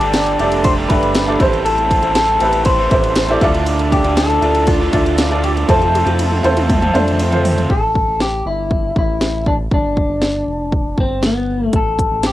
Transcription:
Already playing: G2 D3 A3 D4 G4 A4 D5
0.01 G1 G3 D4 G4 A4, ride
0.13 snare, ride
0.26 ride
0.38 F1 G3 A3 D4 G4 A4 D5, ride
0.52 ride
0.64 C5, kick, ride
0.77 G3 D4 G4 A4
0.89 G1 A3 D4 G4 A4 B4, kick, ride
1.03 ride
1.15 snare, ride
1.26 G3 A3 D4 G4 A4 D5, ride
1.39 A1 A2 E3 G3 C4 E4 G4 A4 C5, kick, ride
1.53 ride
1.65 A4, ride
1.78 ride
1.91 kick, ride
2.03 A1 A2 E3 G3 C4 E4 A4, ride
2.15 A4, snare, ride
2.28 ride
2.40 A1 G3 C4 E4 G4 A4 B4, ride
2.53 ride
2.65 C5, kick, ride
2.78 A2 E3 G3 C4 E4 A4
2.90 A1 C4 E4 G4 A4 C5, kick, ride
3.04 ride
3.16 snare, ride
3.28 A2 E3 G3 C4 E4 G4 A4 D5, ride
3.41 D2 A2 D3 A3 D4 F4 A4 D5, kick, ride
3.54 ride
3.66 ride
3.79 ride
3.92 G4, kick, ride
4.04 D2 D3 A3 D4 F4 A4, ride
4.17 A4, snare, ride
4.30 ride
4.41 D2 A3 D4 F4 A4 D5, ride
4.55 ride
4.67 F4, kick, ride
4.80 D3 A3 D4 F4 A4
4.92 D2 A3 D4 F4 A4 D5, kick, ride
5.06 ride
5.18 snare, ride
5.30 D3 A3 D4 F4 A4 D5, ride
5.44 G4, ride
5.57 ride
5.68 F2 C3 F3 A3 C4 F4 A4 C5, kick, high tom, ride
5.82 high tom, ride
5.95 high tom, ride
6.05 F2 F3 A3 C4 F4 A4, high tom, ride
6.19 mid tom, ride
6.32 mid tom
6.43 E2 A3 C4 F4 A4 C5, mid tom, ride
6.57 mid tom, ride
6.69 kick, mid tom, ride
6.82 F3 A3 C4 F4 A4, mid tom, ride
6.93 F2 A3 C4 D4 F4 A4 C5, mid tom, ride
7.08 ride
7.13 D4
7.20 C4, ride
7.31 F3 A3 C4 F4 A4 C5, floor tom, ride
7.45 floor tom, open hi-hat, ride
7.57 floor tom, ride
7.70 A1 A4, kick
7.95 kick
8.08 A1
8.20 G4, snare
8.45 G1 E4
8.71 kick
8.96 A1 E4, kick
9.21 snare
9.46 D4, kick
9.71 G1 D4, kick
9.97 kick
10.09 G1
10.22 snare
10.47 F1
10.72 kick
10.97 G1 C4, kick
11.23 B3, snare
11.73 A1 A4, kick, closed hi-hat
11.99 kick, closed hi-hat
12.11 A1
12.23 G4, snare, closed hi-hat

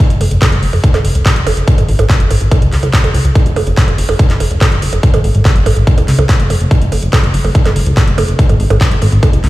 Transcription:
0.10 F#1, closed hi-hat
0.21 F#1, open hi-hat, percussion blips
0.31 F#1, closed hi-hat
0.42 kick, clap, closed hi-hat, percussion blips
0.52 F#1, closed hi-hat
0.63 F#1, open hi-hat
0.73 F#1, open hi-hat, percussion blips
0.84 kick, closed hi-hat
0.94 F#1, clap, closed hi-hat, percussion blips
1.05 F#1, open hi-hat
1.15 C#2, closed hi-hat
1.26 kick, clap, closed hi-hat, percussion blips
1.36 F#1, closed hi-hat
1.47 F#1, open hi-hat, percussion blips
1.57 F#1, closed hi-hat
1.68 kick, closed hi-hat
1.78 G#1, closed hi-hat, percussion blips
1.89 G#1, open hi-hat
1.99 G#1, closed hi-hat, percussion blips
2.10 kick, clap, closed hi-hat
2.20 G#1, closed hi-hat
2.31 G#1, open hi-hat, percussion blips
2.41 G#1, closed hi-hat
2.51 kick, closed hi-hat, percussion blips
2.62 C#2, closed hi-hat
2.72 C#2, clap, open hi-hat
2.83 C#2, closed hi-hat, percussion blips
2.93 kick, clap, closed hi-hat
3.04 C#2, closed hi-hat, percussion blips
3.14 C#2, open hi-hat
3.25 C#2, closed hi-hat
3.35 kick, closed hi-hat, percussion blips
3.46 F#1, closed hi-hat
3.56 F#1, open hi-hat, percussion blips
3.67 F#1, closed hi-hat
3.77 kick, clap, closed hi-hat
3.88 F#1, closed hi-hat, percussion blips
3.98 F#1, open hi-hat
4.09 F#1, open hi-hat, percussion blips
4.19 kick, closed hi-hat
4.30 F#1, clap, closed hi-hat
4.40 F#1, open hi-hat, percussion blips
4.51 C#2, closed hi-hat
4.61 kick, clap, closed hi-hat, percussion blips
4.72 F#1, closed hi-hat
4.82 F#1, open hi-hat
4.93 F#1, closed hi-hat, percussion blips
5.03 kick, closed hi-hat
5.14 G#1, closed hi-hat, percussion blips
5.24 G#1, open hi-hat
5.35 G#1, closed hi-hat
5.45 kick, clap, closed hi-hat, percussion blips
5.56 G#1, closed hi-hat
5.66 G#1, open hi-hat, percussion blips
5.77 G#1, closed hi-hat
5.87 kick, closed hi-hat
5.98 C#2, closed hi-hat, percussion blips
6.08 C#2, clap, open hi-hat
6.19 C#2, closed hi-hat, percussion blips
6.29 kick, clap, closed hi-hat
6.40 F#1, closed hi-hat
6.50 F#1, open hi-hat, percussion blips
6.61 F#1, closed hi-hat
6.71 kick, closed hi-hat
6.82 F#1, closed hi-hat
6.92 F#1, open hi-hat, percussion blips
7.03 F#1, closed hi-hat
7.13 kick, clap, closed hi-hat, percussion blips
7.23 F#1, closed hi-hat
7.34 F#1, open hi-hat
7.44 F#1, open hi-hat, percussion blips
7.55 kick, closed hi-hat
7.65 F#1, clap, closed hi-hat, percussion blips
7.76 F#1, open hi-hat
7.86 C#2, closed hi-hat
7.97 kick, clap, closed hi-hat, percussion blips
8.07 F#1, closed hi-hat
8.18 F#1, open hi-hat, percussion blips
8.28 F#1, closed hi-hat
8.39 kick, closed hi-hat
8.49 G#1, closed hi-hat, percussion blips
8.60 G#1, open hi-hat
8.70 G#1, closed hi-hat, percussion blips
8.81 kick, clap, closed hi-hat
8.91 G#1, closed hi-hat
9.02 G#1, open hi-hat, percussion blips
9.12 G#1, closed hi-hat
9.23 kick, closed hi-hat, percussion blips
9.33 C#2, closed hi-hat
9.44 C#2, clap, open hi-hat

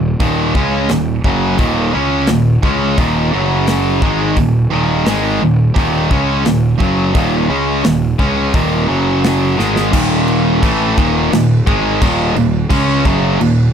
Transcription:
Already playing: D#1 D#2 A#2
0.20 D#1 D#2 A#2 D#3, kick, open hi-hat
0.55 C#2 C#3 G#3 C#4, kick
0.89 D#1 D#2 A#2, snare, open hi-hat
1.24 F#1 F#2 C#3 F#3, kick
1.58 D#1 D#2 A#2 D#3, kick, open hi-hat
1.94 C#2 C#3 G#3 C#4
2.27 D#1 D#2 A#2, snare, open hi-hat
2.63 C#2 C#3 G#3 C#4, kick
2.98 D#1 D#2 A#2 D#3, kick, open hi-hat
3.33 F#1 F#2 C#3 F#3
3.67 snare, open hi-hat
4.02 G#1 G#2 D#3 G#3, kick
4.36 D#1 D#2 A#2, kick, open hi-hat
4.73 D#1 D#2 A#2 D#3
5.06 G#1 G#2 D#3 G#3, snare, open hi-hat
5.39 D#1 D#2
5.44 D#2 A#2
5.76 D#1 D#2 A#2 D#3, kick, open hi-hat
6.11 C#2 C#3 G#3 C#4, kick
6.45 D#1 D#2 A#2, snare, open hi-hat
6.80 F#1 F#2 C#3 F#3, kick
7.15 D#1 D#2 A#2 D#3, kick, open hi-hat
7.49 C#2 C#3 G#3 C#4
7.84 D#1 D#2 A#2, snare, open hi-hat
8.19 C#2 C#3 G#3 C#4, kick
8.53 D#1 D#2 A#2 D#3, kick, open hi-hat
8.87 F#1 F#2 C#3 F#3
9.24 snare, open hi-hat
9.56 G#1 G#2 D#3 G#3, snare
9.76 snare
9.91 D#1 D#2 A#2 D#3, kick, crash
10.28 crash
10.63 A1 A2 E3 A3, kick, crash
10.98 D#1 D#2 A#2 D#3, kick, crash
11.32 D#1 D#2 A#2, snare, crash
11.66 G#1 G#2 D#3 G#3, kick, crash
12.01 D#1 D#2 A#2 D#3, kick, crash
12.35 D#1 D#2 A#2, crash
12.70 C#2 C#3 G#3 C#4, kick, crash
13.05 F#1 F#2 C#3 F#3, kick, crash
13.39 D#1 D#2 A#2, crash

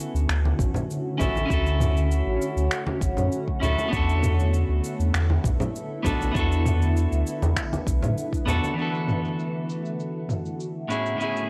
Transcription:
Already playing: D3 A3 C#4 E4 F#4 A4
0.00 cabasa
0.14 D2, cabasa
0.29 D2, finger snap, cabasa
0.46 high conga
0.59 A1, kick, mid tom, cabasa
0.74 low conga, cabasa
0.91 cabasa
1.18 A1 C#4 E4 F#4, kick, low conga, cabasa
1.22 A4
1.35 high conga, cabasa
1.45 C#4 E4
1.50 D2 F#4 A4, kick, cabasa
1.66 cabasa
1.80 mid tom, high conga, cabasa
1.97 cabasa
2.11 cabasa
2.26 A1
2.42 cabasa
2.56 D2, cabasa
2.71 finger snap, cabasa
2.87 high conga
3.01 A1, kick, cabasa
3.17 F#2, low conga, cabasa
3.32 cabasa
3.48 kick
3.60 D2 C#4 E4 F#4, low conga, cabasa
3.64 A4
3.78 high conga, cabasa
3.88 B3 D4 E4
3.92 E2 D3 B3 F#4 A4, kick, cabasa
4.09 cabasa
4.22 mid tom, high conga, cabasa
4.40 cabasa
4.54 cabasa
4.69 D2
4.84 cabasa
4.99 E2, cabasa
5.14 E2, finger snap, cabasa
5.30 high conga
5.44 B1, kick, mid tom, cabasa
5.60 low conga, cabasa
5.76 cabasa
6.03 B1 B3 D4 F#4 A4, kick, low conga, cabasa
6.21 high conga, cabasa
6.32 E2 B3 D4, kick
6.36 F#4 A4, cabasa
6.52 cabasa
6.65 mid tom, high conga, cabasa
6.82 cabasa
6.97 cabasa
7.12 D2, cabasa
7.27 cabasa
7.42 E2, high conga, cabasa
7.56 finger snap, kick, cabasa
7.73 high conga, cabasa
7.87 B1, kick, cabasa
8.02 A2, low conga, cabasa
8.18 cabasa
8.33 kick, cabasa
8.46 E2 B3 D4 F#4 A4, low conga, cabasa
8.64 high conga, cabasa
8.74 D3 E3 B3 D4 E4
8.78 A3 F#4 A4, cabasa
8.94 cabasa
9.08 mid tom, cabasa
9.25 cabasa
9.39 cabasa
9.69 cabasa
9.85 cabasa
10.00 cabasa
10.29 mid tom, cabasa
10.46 cabasa
10.60 cabasa
10.88 A2 C#3 B3 C#4 E4 G#4, cabasa
11.06 cabasa
11.16 A2 B3 C#4
11.21 E4 G#4, cabasa
11.37 cabasa

